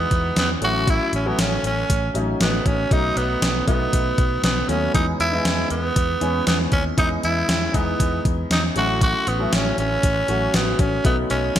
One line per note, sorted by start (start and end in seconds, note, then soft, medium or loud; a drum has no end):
0.00 0.64 E3 medium
0.00 0.64 G#3 medium
0.00 0.37 B3 medium
0.00 0.64 B3 medium
0.00 0.65 D4 medium
0.00 0.64 D#4 medium
0.00 0.64 D#5 medium
0.11 0.30 E2 medium
0.11 kick medium
0.11 closed hi-hat medium
0.36 0.55 E2 medium
0.36 0.50 B3 medium
0.36 snare loud
0.36 closed hi-hat medium
0.61 0.98 A1 medium
0.61 1.16 F#3 medium
0.61 1.17 A3 medium
0.61 1.17 C#4 medium
0.61 1.17 E4 medium
0.61 0.91 F#4 loud
0.61 closed hi-hat medium
0.88 1.14 E4 loud
0.88 kick loud
0.88 closed hi-hat medium
1.13 1.31 A1 medium
1.13 1.29 C#4 medium
1.13 closed hi-hat medium
1.25 2.02 F#3 medium
1.25 2.02 A3 medium
1.25 1.42 B3 medium
1.25 2.02 C#4 medium
1.25 2.03 F#4 medium
1.38 1.57 A1 medium
1.38 1.65 C#4 medium
1.38 snare loud
1.38 closed hi-hat loud
1.63 1.82 A1 medium
1.63 2.11 C#4 medium
1.63 closed hi-hat medium
1.90 2.08 A1 medium
1.90 kick medium
1.90 closed hi-hat medium
2.14 2.33 A1 medium
2.14 2.80 F#3 medium
2.14 2.80 A3 medium
2.14 2.80 C#4 medium
2.14 2.81 D#4 medium
2.14 closed hi-hat medium
2.40 2.58 A1 medium
2.40 2.68 B3 medium
2.40 snare loud
2.40 closed hi-hat medium
2.66 2.84 A1 medium
2.66 2.94 C#4 medium
2.66 kick medium
2.66 closed hi-hat medium
2.91 3.09 B1 loud
2.91 3.57 F#3 medium
2.91 3.57 A3 medium
2.91 3.57 B3 medium
2.91 3.57 D#4 medium
2.91 3.19 D#4 medium
2.91 kick loud
2.91 closed hi-hat medium
3.16 3.35 B1 medium
3.16 3.67 B3 medium
3.16 closed hi-hat medium
3.42 3.60 B1 medium
3.42 snare loud
3.42 closed hi-hat medium
3.67 3.86 B1 medium
3.67 4.55 F#3 medium
3.67 4.55 A3 medium
3.67 4.55 B3 medium
3.67 4.40 B3 medium
3.67 4.55 D#4 medium
3.67 kick medium
3.67 closed hi-hat medium
3.93 4.11 B1 medium
3.93 kick medium
3.93 closed hi-hat medium
4.18 4.37 B1 medium
4.18 kick medium
4.18 closed hi-hat medium
4.43 4.62 B1 medium
4.43 4.71 B3 medium
4.43 snare loud
4.43 closed hi-hat medium
4.68 4.87 D#2 medium
4.68 4.90 F#3 medium
4.68 4.91 A3 medium
4.68 4.91 B3 medium
4.68 4.94 C#4 medium
4.68 4.91 F#4 medium
4.68 closed hi-hat medium
4.94 5.13 E2 loud
4.94 5.27 E3 medium
4.94 5.27 G#3 medium
4.94 5.27 B3 medium
4.94 5.06 D#4 medium
4.94 5.28 D#4 medium
4.94 kick medium
4.94 closed hi-hat medium
5.19 5.38 E2 medium
5.19 5.68 E4 loud
5.19 closed hi-hat medium
5.32 6.09 E3 medium
5.32 6.09 G#3 medium
5.32 6.09 B3 medium
5.32 6.10 D#5 medium
5.45 5.63 E2 medium
5.45 snare loud
5.45 closed hi-hat medium
5.70 5.89 E2 medium
5.70 6.43 B3 medium
5.70 closed hi-hat medium
5.96 6.15 E2 medium
5.96 kick medium
5.96 closed hi-hat medium
6.21 6.40 E2 medium
6.21 6.87 E3 medium
6.21 6.87 G#3 medium
6.21 6.87 B3 medium
6.21 6.88 C#4 medium
6.21 closed hi-hat medium
6.47 6.65 E2 medium
6.47 6.59 B3 medium
6.47 snare loud
6.47 closed hi-hat medium
6.72 6.91 D#2 medium
6.72 6.84 C#4 medium
6.72 kick medium
6.72 closed hi-hat medium
6.97 7.16 E2 loud
6.97 7.63 E3 medium
6.97 7.63 G#3 medium
6.97 7.63 B3 medium
6.97 7.10 D#4 loud
6.97 7.64 D#5 medium
6.97 kick loud
6.97 closed hi-hat medium
7.23 7.42 E2 medium
7.23 7.77 E4 medium
7.23 closed hi-hat medium
7.48 7.67 E2 medium
7.48 snare loud
7.48 closed hi-hat medium
7.74 7.92 E2 medium
7.74 8.61 E3 medium
7.74 8.61 G#3 medium
7.74 8.62 B3 medium
7.74 8.24 B3 medium
7.74 8.62 D#4 medium
7.74 kick medium
7.74 closed hi-hat medium
8.00 8.18 E2 medium
8.00 kick medium
8.00 closed hi-hat loud
8.25 8.43 E2 medium
8.25 kick medium
8.25 closed hi-hat medium
8.50 8.69 E2 medium
8.50 8.63 D#4 medium
8.50 snare loud
8.50 closed hi-hat medium
8.75 9.12 A1 medium
8.75 9.30 F#3 medium
8.75 9.31 A3 medium
8.75 9.31 C#4 medium
8.75 9.31 E4 medium
8.75 9.00 F#4 medium
8.75 closed hi-hat medium
9.01 9.30 F#4 loud
9.01 kick loud
9.01 closed hi-hat medium
9.27 9.45 A1 medium
9.27 9.55 B3 medium
9.27 closed hi-hat medium
9.39 10.16 F#3 medium
9.39 10.16 A3 medium
9.39 10.16 C#4 medium
9.39 10.16 E4 medium
9.53 9.71 A1 medium
9.53 9.78 C#4 medium
9.53 snare loud
9.53 closed hi-hat medium
9.78 9.96 A1 medium
9.78 10.57 C#4 medium
9.78 closed hi-hat medium
10.03 10.22 A1 loud
10.03 kick medium
10.03 closed hi-hat medium
10.28 10.47 A1 medium
10.28 10.94 F#3 medium
10.28 10.94 A3 medium
10.28 10.94 C#4 medium
10.28 10.94 F#4 medium
10.28 closed hi-hat medium
10.54 10.72 A1 medium
10.54 10.82 B3 medium
10.54 snare loud
10.54 closed hi-hat medium
10.79 10.97 A1 medium
10.79 11.05 C#4 medium
10.79 kick medium
10.79 closed hi-hat medium
11.04 11.23 B1 medium
11.04 11.59 F#3 medium
11.04 11.59 A3 medium
11.04 11.59 B3 medium
11.04 11.17 B3 medium
11.04 11.59 D#4 medium
11.04 kick loud
11.04 closed hi-hat medium
11.30 11.49 B1 medium
11.30 11.59 C#4 medium
11.30 closed hi-hat medium
11.56 11.59 B1 medium
11.56 snare loud
11.56 closed hi-hat medium